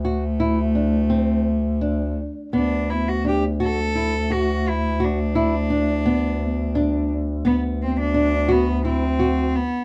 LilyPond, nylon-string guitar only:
\new Staff \with { instrumentName = "Nylon-string guitar" } { \time 7/8 \key b \phrygian \tempo 4 = 86 fis'8 e'8 d'8 c'4 d'4 | b4 d'8 fis'8 e'8 fis'4 | fis'8 e'8 d'8 b4 d'4 | b4 d'8 fis'8 e'8 fis'4 | }